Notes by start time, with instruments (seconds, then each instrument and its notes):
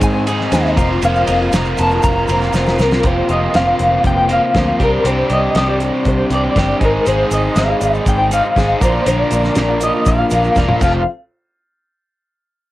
Already playing: overdriven electric guitar G#2 D#3 G#3 C4 D#4 G#4, steel-string acoustic guitar D#4 G#4 C5, upright piano G#4 C5 D#5, tonewheel organ G#4 D#5 C6
0.01 fingered electric bass G#2, clean electric guitar G#5, kick, ride, shaker
0.14 steel-string acoustic guitar D#4 G#4 C5
0.26 steel-string acoustic guitar G#3 D#4 G#4 C5, overdriven electric guitar C4, ride, shaker
0.41 snare
0.51 fingered electric bass D#2, steel-string acoustic guitar G#3 D#4 G#4 C5, overdriven electric guitar C4, clean electric guitar D#5, snare, ride, shaker
0.65 snare
0.76 fingered electric bass F1, overdriven electric guitar F3 A#4, steel-string acoustic guitar A#3 C4 F4 C5, tonewheel organ A#4 F5, upright piano A#4 C5 F5, kick, ride, shaker
0.90 steel-string acoustic guitar C4 F4 C5
1.02 fingered electric bass F1, steel-string acoustic guitar F3 A#3 C4 F4 C5, overdriven electric guitar A#4, clean electric guitar F5, ride, shaker
1.15 shaker
1.27 fingered electric bass F1, steel-string acoustic guitar A#3 C4 F4 C5, overdriven electric guitar A#4, upright piano A#4 C5 D#5, ride, shaker
1.41 steel-string acoustic guitar F3 A#3 C4 F4 C5
1.52 fingered electric bass F1, overdriven electric guitar F3 C4 F4 A#4, snare, ride, shaker
1.65 shaker
1.78 fingered electric bass F1, steel-string acoustic guitar A#3 C4 F4 C5, upright piano A#4 C5 F5, clean electric guitar A5, ride, shaker
1.91 steel-string acoustic guitar C4 F4 C5, shaker
2.03 fingered electric bass F1, clean electric guitar A#5, kick, ride, shaker
2.17 steel-string acoustic guitar C4 F4 C5
2.28 fingered electric bass F1, steel-string acoustic guitar A#3 C4 F4 C5, overdriven electric guitar A#4, ride, shaker
2.42 snare, shaker
2.53 fingered electric bass F1, steel-string acoustic guitar F3 A#3 C4 F4 C5, overdriven electric guitar A#4, snare, shaker
2.66 snare, shaker
2.78 fingered electric bass C2, steel-string acoustic guitar A#3 C4 F4 C5, overdriven electric guitar A#4, clean electric guitar A#4, snare, shaker
2.91 steel-string acoustic guitar C4 F4 C5, snare, shaker
3.03 fingered electric bass F1, overdriven electric guitar F2 C3, steel-string acoustic guitar F3 A#3 C4 F4 C5, upright piano A#4 C5 F5, clean electric guitar C5, kick, closed hi-hat
3.29 fingered electric bass F1, overdriven electric guitar F3, steel-string acoustic guitar A#3 C4 F4 C5, clean electric guitar D#5, closed hi-hat
3.53 fingered electric bass F1, overdriven electric guitar F2 C3, steel-string acoustic guitar F3 A#3 C4 F4 C5, clean electric guitar F5, snare, closed hi-hat
3.67 steel-string acoustic guitar C4 F4 C5, upright piano A#4 C5 F5
3.78 fingered electric bass F1, steel-string acoustic guitar A#3 C4 F4 C5, upright piano A#4 C5 F5, closed hi-hat
3.91 steel-string acoustic guitar C4 F4 C5
4.04 fingered electric bass F1, clean electric guitar G5, kick, closed hi-hat
4.16 steel-string acoustic guitar C4 F4 C5
4.28 overdriven electric guitar F3, steel-string acoustic guitar A#3 C4 F4 C5, closed hi-hat
4.33 clean electric guitar F5
4.42 steel-string acoustic guitar C4 F4 C5
4.55 fingered electric bass D2, steel-string acoustic guitar F3 A#3 C4 F4 C5, kick, snare, closed hi-hat
4.68 steel-string acoustic guitar C4 F4 C5
4.79 fingered electric bass C2, overdriven electric guitar C3 G3, steel-string acoustic guitar C4 D4 G4 C5, upright piano G4 C5 D5, clean electric guitar A#4, kick, closed hi-hat
5.04 fingered electric bass C2, overdriven electric guitar C3 G3, steel-string acoustic guitar C4 D4 G4 C5, clean electric guitar C5, closed hi-hat
5.30 fingered electric bass C2, steel-string acoustic guitar C4 D4 G4 C5, clean electric guitar D#5, closed hi-hat
5.55 fingered electric bass C2, overdriven electric guitar C3 G3, steel-string acoustic guitar C4 D4 G4 C5, clean electric guitar D#5, snare, closed hi-hat
5.68 steel-string acoustic guitar D4 G4 C5, upright piano G4 C5 D5, clean electric guitar D5
5.80 steel-string acoustic guitar C4 D4 G4 C5, upright piano C5 D5, closed hi-hat
5.94 steel-string acoustic guitar D4 G4 C5
6.05 fingered electric bass C2, clean electric guitar C5, kick, closed hi-hat
6.18 steel-string acoustic guitar D4 G4 C5
6.30 fingered electric bass C2, steel-string acoustic guitar C4 D4 G4 C5, clean electric guitar D5, closed hi-hat
6.43 steel-string acoustic guitar D4 G4 C5
6.56 fingered electric bass G1, overdriven electric guitar G3, steel-string acoustic guitar C4 D4 G4 C5, kick, snare, closed hi-hat
6.80 fingered electric bass G#1, steel-string acoustic guitar G#3 D#4 G#4 C5, overdriven electric guitar C4, upright piano G#4 C5 D#5, kick, closed hi-hat
6.85 clean electric guitar A#4
7.06 fingered electric bass G#1, steel-string acoustic guitar G#3 D#4 G#4 C5, overdriven electric guitar C4, tonewheel organ G#4 C6, clean electric guitar C5, closed hi-hat, shaker
7.31 fingered electric bass G#1, steel-string acoustic guitar G#3 D#4 G#4 C5, overdriven electric guitar C4, clean electric guitar D#5, closed hi-hat, shaker
7.56 fingered electric bass G#1, steel-string acoustic guitar G#3 D#4 G#4 C5, overdriven electric guitar C4, clean electric guitar F5, snare, closed hi-hat, shaker
7.68 steel-string acoustic guitar D#4 G#4 C5, upright piano G#4 C5 D#5
7.80 fingered electric bass G#1, steel-string acoustic guitar G#3 D#4 G#4 C5, upright piano G#4 C5 D5, closed hi-hat, shaker
7.93 steel-string acoustic guitar D#4 G#4 C5, shaker
8.06 fingered electric bass G#1, clean electric guitar G5, kick, closed hi-hat, shaker
8.18 steel-string acoustic guitar D#4 G#4 C5
8.31 steel-string acoustic guitar G#3 D#4 G#4 C5, overdriven electric guitar C4, clean electric guitar F5, closed hi-hat, shaker
8.43 steel-string acoustic guitar D#4 G#4 C5
8.56 fingered electric bass G#1, steel-string acoustic guitar G#3 D#4 G#4 C5, overdriven electric guitar C4, kick, snare, closed hi-hat, shaker
8.80 fingered electric bass A#1, overdriven electric guitar A#2 D3 F3, steel-string acoustic guitar A#3 D4 F4 A#4, upright piano F4 A#4 D5, tonewheel organ A#4 F5 D6, clean electric guitar C5, kick, closed hi-hat, shaker
9.06 fingered electric bass A#1, steel-string acoustic guitar A#2 F3 A#3 D4 F4 A#4, overdriven electric guitar D3, clean electric guitar D5, closed hi-hat, shaker
9.31 fingered electric bass A#1, overdriven electric guitar F3, steel-string acoustic guitar A#3 D4 F4 A#4, closed hi-hat, shaker
9.44 snare, shaker
9.55 fingered electric bass A#1, steel-string acoustic guitar A#2 F3 A#3 D4 F4 A#4, overdriven electric guitar D3, snare, closed hi-hat, shaker
9.68 steel-string acoustic guitar A#3 D4 F4 A#4, upright piano F4 A#4 D5
9.80 steel-string acoustic guitar A#3 D4 F4 A#4, upright piano F4 A#4 D5, clean electric guitar D#5, closed hi-hat, shaker
9.94 steel-string acoustic guitar A#3 D4 F4 A#4
10.06 fingered electric bass A#1, clean electric guitar F5, kick, closed hi-hat, shaker
10.18 steel-string acoustic guitar A#3 D4 F4 A#4
10.30 fingered electric bass A#1, steel-string acoustic guitar A#3 D4 F4 A#4, closed hi-hat, shaker
10.35 overdriven electric guitar F3
10.42 steel-string acoustic guitar A#3 D4 F4 A#4, shaker
10.55 fingered electric bass E1, steel-string acoustic guitar A#2 F3 A#3 D4 F4 A#4, kick, snare, shaker
10.69 mid tom
10.79 fingered electric bass F1, overdriven electric guitar F2 C3, steel-string acoustic guitar F3 A3 C4 F4 A4, tonewheel organ C4 A4 F5, upright piano F4 A4 C5, clean electric guitar F5, kick, crash, shaker